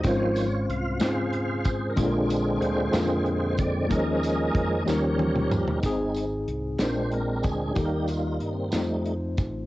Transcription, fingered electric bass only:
\new Staff \with { instrumentName = "Fingered electric bass" } { \clef bass \time 6/8 \key aes \major \tempo 4. = 62 aes,,4 c,8 aes,4. | bes,,4 d,8 f,4. | ees,4 f,8 ees,4. | aes,,4 c,8 bes,,4 d,8 |
ees,4 g,8 f,4 a,,8 | }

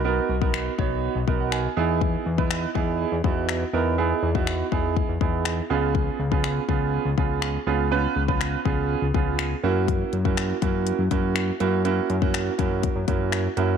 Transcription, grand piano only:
\new Staff \with { instrumentName = "Grand piano" } { \time 4/4 \key fis \mixolydian \tempo 4 = 122 << { r2 r8 dis''16 fis''16 gis''8 gis''8 | r1 | r1 | r1 |
r1 | r1 | r1 | } \\ { <b dis' fis' ais'>8 r16 <b dis' fis' ais'>8 r16 <b dis' fis' cis''>8. r16 <b dis' fis' ais'>8. r16 <b dis' e' gis'>8~ | <b dis' e' gis'>8 r16 <b dis' e' b'>8 r16 <b dis' e' gis'>8. r16 <b dis' e' fis'>8. r16 <b dis' e' ais'>8 | <b dis' e' gis'>8 r16 <b dis' e' fis'>8 r16 <b dis' e' gis'>8. r16 <b dis' e' gis'>8. r16 <b cis' eis' gis'>8~ | <b cis' eis' gis'>8 r16 <b cis' eis' gis'>8 r16 <b cis' eis' gis'>8. r16 <b cis' eis' gis'>8. r16 <b cis' eis' gis'>8 |
<b cis' eis' b'>8 r16 <b cis' eis' b'>8 r16 <b cis' eis' gis'>8. r16 <b cis' eis' gis'>8. r16 <ais cis' e' fis'>8~ | <ais cis' e' fis'>8 r16 <ais cis' e' fis'>8 r16 <ais cis' e' fis'>8. r16 <ais cis' e' fis'>8. r16 <ais cis' e' fis'>8 | <ais cis' e' fis'>8 r16 <ais cis' e' fis'>8 r16 <ais cis' e' fis'>8. r16 <ais cis' e' fis'>8. r16 <ais cis' e' fis'>8 | } >> }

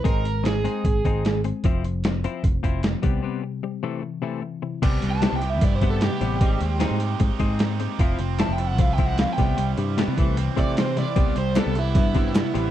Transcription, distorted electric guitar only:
\new Staff \with { instrumentName = "Distorted electric guitar" } { \time 4/4 \key c \major \tempo 4 = 151 r1 | r1 | r1 | g8 b8 e'8 g'8 e'8 b8 e'8 g'8 |
g8 c'8 ees'8 g'8 ees'8 c'8 ees'8 g'8 | f8 c'8 e'8 a'8 e'8 c'8 e'8 g8 | g8 g8 b8 e8 c'8 e8 c'8 e'8 | g8 g8 b8 e'8 b8 g8 b8 e'8 | }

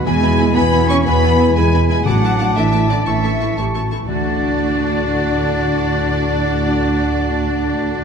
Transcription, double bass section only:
\new Staff \with { instrumentName = "Double bass section" } { \clef bass \time 12/8 \key d \major \tempo 4. = 120 e,4. e,4. e,4. e,4. | a,,4. a,,4. a,,4. a,,4. | d,1.~ | d,1. | }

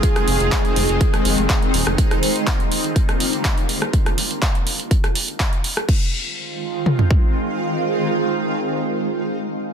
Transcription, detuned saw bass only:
\new Staff \with { instrumentName = "Detuned saw bass" } { \clef bass \time 4/4 \key f \dorian \tempo 4 = 123 r8 f,,16 f,,16 r8 f,,16 f,,16 r8 f,,16 f,,16 r8 ees,,16 f,,16 | r1 | r1 | r1 |
r1 | }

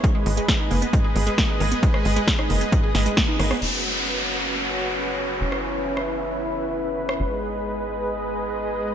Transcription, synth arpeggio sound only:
\new Staff \with { instrumentName = "Synth arpeggio sound" } { \time 4/4 \key fis \mixolydian \tempo 4 = 134 gis16 gis16 gis16 gis16 gis16 dis'16 ais16 b16 gis,16 gis'16 gis16 gis16 ais16 dis'16 ais16 b16 | gis16 gis16 gis16 gis16 r16 dis'16 ais16 b16 gis,16 gis'16 gis16 gis16 ais16 dis'16 ais16 b16 | r1 | r1 |
r1 | }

